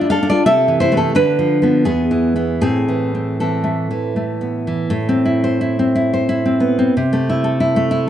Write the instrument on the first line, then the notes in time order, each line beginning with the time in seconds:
nylon-string guitar
Already playing: A3 D4 F4 D5
0.01 E4
0.10 A4 F5
0.23 D4
0.30 F4 D5
0.46 C3 A4 E5
0.68 E3
0.80 E4 C5
0.92 E3 A3
0.97 C4 A4
1.15 D3 D4 B4
1.39 F3
1.62 F3 B3
1.85 E2 B3 G#4
2.11 E3
2.36 E3 B3
2.61 A2 C4 G#4
2.88 E3
3.15 C4
3.40 E3 C4 A4
3.64 A3
3.91 E3
4.16 A3
4.41 B3
4.67 E3
4.90 A2
5.09 C4
5.25 E4
5.44 C5
5.61 E4
5.79 C4
5.95 E4
6.13 C5
6.29 E4
6.46 C4
6.60 B3
6.79 C4
6.97 C3
7.13 A3
7.30 E4
7.44 A4
7.60 E4
7.76 A3
7.91 E4